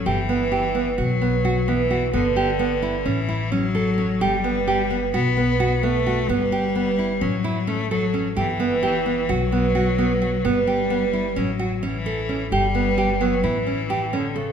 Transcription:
<<
  \new Staff \with { instrumentName = "Nylon-string guitar" } { \time 9/8 \key g \lydian \tempo 4. = 87 g'8 b8 g'8 b8 fis'8 b8 fis'8 b8 fis'8 | b8 g'8 b8 e'8 cis'8 e'8 cis'8 a'8 cis'8 | g'8 b8 g'8 b8 fis'8 b8 fis'8 b8 fis'8 | b8 g'8 b8 e'8 cis'8 e'8 cis'8 a'8 cis'8 |
g'8 b8 g'8 b8 fis'8 b8 fis'8 b8 fis'8 | b8 g'8 b8 e'8 cis'8 fis'8 cis'8 a'8 cis'8 | g'8 b8 g'8 b8 e'8 cis'8 g'8 cis'8 a'8 | }
  \new Staff \with { instrumentName = "Cello" } { \clef bass \time 9/8 \key g \lydian e2 fis4. e4 | d2 e4 fis4. | g2 b4. a4 | g2 fis4 a8 fis4 |
e2 fis2~ fis8 | g2 fis4 e4. | g4. fis8 e4. d8 cis8 | }
  \new Staff \with { instrumentName = "Upright bass" } { \clef bass \time 9/8 \key g \lydian g,,2 b,,2~ b,,8 | g,,2 a,,2~ a,,8 | g,,2 b,,2~ b,,8 | g,,2 a,,2~ a,,8 |
g,,2 b,,2~ b,,8 | g,,2 a,,2~ a,,8 | g,,2 a,,2~ a,,8 | }
>>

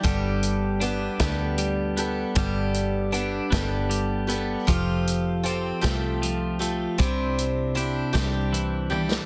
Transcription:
<<
  \new Staff \with { instrumentName = "Steel-string acoustic guitar" } { \time 6/8 \key g \mixolydian \tempo 4. = 52 <g, g b d' g' a'>4 <b d' g' a'>8 <g, g b d' g' a'>4 <b d' g' a'>8 | <g, g b d' g' a'>4 <b d' g' a'>8 <g, g b d' g' a'>4 <b d' g' a'>8 | <f c' f' g' a'>4 <c' f' g' a'>8 <f c' f' g' a'>4 <f' g' a'>8 | <c c' d' e' g'>4 <c' d' e' g'>8 <c c' d' e' g'>4 <d' e' g'>8 | }
  \new Staff \with { instrumentName = "Clean electric guitar" } { \clef bass \time 6/8 \key g \mixolydian g4 d'8 b8 g8 b8 | g4 d'8 b8 g8 b8 | f4 c'8 a8 f8 a8 | c4 d'8 g8 e8 g8 | }
  \new Staff \with { instrumentName = "Fingered electric bass" } { \clef bass \time 6/8 \key g \mixolydian g,,4. d,4. | g,,4. g,,4. | f,,4. c,4. | c,4. c,4. | }
  \new DrumStaff \with { instrumentName = "Drums" } \drummode { \time 6/8 <hh bd>8 hh8 hh8 <hh bd sn>8 hh8 hh8 | <hh bd>8 hh8 hh8 <hh bd sn>8 hh8 hh8 | <hh bd>8 hh8 hh8 <hh bd sn>8 hh8 hh8 | <hh bd>8 hh8 hh8 <hh bd sn>8 hh8 tommh16 sn16 | }
>>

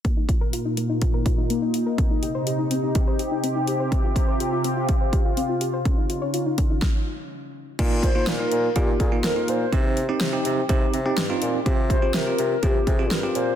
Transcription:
<<
  \new Staff \with { instrumentName = "Soft synth lead" } { \time 4/4 \key c \minor \tempo 4 = 124 r1 | r1 | r1 | r1 |
r8 c''8 bes'4 g'8 aes'8 bes'8 c''8~ | c''8 r2. r8 | r8 c''8 bes'4 g'8 aes'8 bes'8 c''8 | }
  \new Staff \with { instrumentName = "Synth arpeggio sound" } { \time 4/4 \key c \minor bes16 ees'16 f'16 bes'16 f'16 ees'16 bes16 ees'16 f'16 bes'16 f'16 ees'16 bes16 ees'16 f'16 bes'16 | c'16 ees'16 g'16 c''16 g'16 ees'16 c'16 ees'16 g'16 c''16 g'16 ees'16 c'16 ees'16 g'16 c''16 | c'16 f'16 g'16 c''16 g'16 f'16 c'16 f'16 g'16 c''16 g'16 f'16 c'16 f'16 g'16 c''16 | des'16 ees'16 f'16 des''16 f'16 ees'16 des'16 ees'16 r2 |
r1 | r1 | r1 | }
  \new Staff \with { instrumentName = "Tine electric piano" } { \time 4/4 \key c \minor r1 | r1 | r1 | r1 |
<bes ees' f'>8 r16 <bes ees' f'>8 <bes ees' f'>8 r16 <bes ees' f'>8 r16 <bes ees' f'>8 <bes ees' f'>8 r16 | <c' ees' g'>8 r16 <c' ees' g'>8 <c' ees' g'>8 r16 <c' ees' g'>8 r16 <c' ees' g'>8 <c' ees' f'>8 r16 | <c' f' g'>8 r16 <c' f' g'>8 <c' f' g'>8 r16 <c' f' g'>8 r16 <c' f' g'>8 <c' f' g'>8 r16 | }
  \new Staff \with { instrumentName = "Analog synth pad" } { \time 4/4 \key c \minor << { <bes, bes f'>1 | <c c' g'>1~ | <c c' g'>1 | <des des'>2 r2 |
r1 | r1 | r1 | } \\ { ees'1~ | ees'1 | f'1 | ees'2 r2 |
r1 | r1 | r1 | } >> }
  \new Staff \with { instrumentName = "Bassoon" } { \clef bass \time 4/4 \key c \minor r1 | r1 | r1 | r1 |
bes,4 bes,8 bes,8 bes,8 bes,8 f,8 bes,8 | c4 c8 c8 c8 c8 g,8 bes,8 | c4 c8 c8 c8 c8 g,8 bes,8 | }
  \new DrumStaff \with { instrumentName = "Drums" } \drummode { \time 4/4 <hh bd>8 <hh bd>8 hh8 hh8 <hh bd>8 <hh bd>8 hh8 hh8 | <hh bd>8 hh8 hh8 hh8 <hh bd>8 hh8 hh8 hh8 | <hh bd>8 <hh bd>8 hh8 hh8 <hh bd>8 <hh bd>8 hh8 hh8 | <hh bd>8 hh8 hh8 <hh bd>8 <bd sn>4 r4 |
<cymc hh bd>8 <hh bd>8 <hh sn>8 hh8 <hh bd>8 <hh bd>8 <hh sn>8 hh8 | <hh bd>8 hh8 <hh sn>8 hh8 <hh bd>8 hh8 <hh sn>8 hh8 | <hh bd>8 <hh bd>8 <hh sn>8 hh8 <hh bd>8 <hh bd>8 <hh sn>8 hh8 | }
>>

